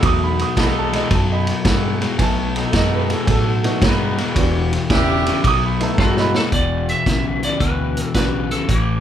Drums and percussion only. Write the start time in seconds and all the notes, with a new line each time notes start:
0.03 kick, snare, ride
0.39 snare, ride
0.57 kick, snare, ride
0.93 snare, ride
1.11 kick, snare, ride
1.47 snare, ride
1.65 kick, snare, ride
2.01 snare, ride
2.19 kick, snare, ride
2.56 snare, ride
2.73 kick, snare, ride
3.10 snare, ride
3.27 kick, snare, ride
3.64 snare, ride
3.82 kick, snare, ride
4.18 snare, ride
4.36 kick, snare, ride
4.73 snare, ride
4.90 kick, snare, ride
5.26 snare, ride
5.44 kick, snare, ride
5.80 snare, ride
5.98 kick, snare
6.16 snare
6.34 snare
6.52 kick, snare, closed hi-hat
6.89 snare, closed hi-hat
7.06 kick, snare, closed hi-hat
7.43 snare, closed hi-hat
7.60 kick, snare, closed hi-hat
7.97 snare, closed hi-hat
8.14 kick, snare, closed hi-hat
8.51 snare, closed hi-hat
8.69 kick, snare, closed hi-hat